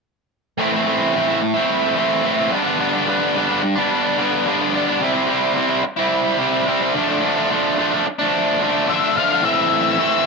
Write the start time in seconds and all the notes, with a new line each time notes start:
0.58 A2 E3 A3 C4 E4
0.72 A3 C4 E4
0.85 E3 A3 C4
0.89 E4
1.13 A2 E3 A3 C4 E4
1.28 A3 C4 E4
1.41 muted overdriven electric guitar stroke
1.54 A3 C4 E4
1.95 E3 A3 C4 E4
2.23 A2 E3 A3 C4 E4
2.37 A3 C4 E4
2.51 G2 D3 G3 B3 D4
2.64 G3 B3 D4
2.78 G2 D3 G3 B3
2.82 D4
2.93 G3 B3 D4
3.07 D3 G3 B3 D4
3.34 G2 D3 G3 B3 D4
3.48 B3 D4
3.52 G3
3.63 muted overdriven electric guitar stroke
3.75 G3 B3 D4
4.18 D3 G3 B3 D4
4.45 G2 D3 G3 B3 D4
4.59 G3 B3 D4
4.73 D3 G3 B3 D4
4.86 G3 B3 D4
5.00 C3 G3 C4 E4
5.13 G3 C4 E4
5.27 C3 G3 C4 E4
5.54 C3 G3 C4 E4
5.68 G3 C4 E4
5.83 muted overdriven electric guitar stroke
5.96 C4 E4
6.00 G3
6.37 C3 G3 C4 E4
6.66 C3 G3 C4 E4
6.80 G3 C4 E4
6.93 D3 F3 A3 D4
7.07 F3 A3 D4
7.22 D3 F3 A3 D4
7.35 F3 A3 D4
7.49 D3 F3 A3 D4
7.77 D3 F3 A3 D4
7.91 F3 A3 D4
8.06 muted overdriven electric guitar stroke
8.19 F3 A3 D4
8.60 D3 F3 A3
8.64 D4
8.88 D3 F3 A3 D4 E5
9.02 F3 A3 D4
9.14 D3 F3 A3 D4 F5
9.28 F3 A3 D4
9.42 A2 E3 A3 C4 E4 A4 E5
9.98 A2 E3 A3 C4 E4 A4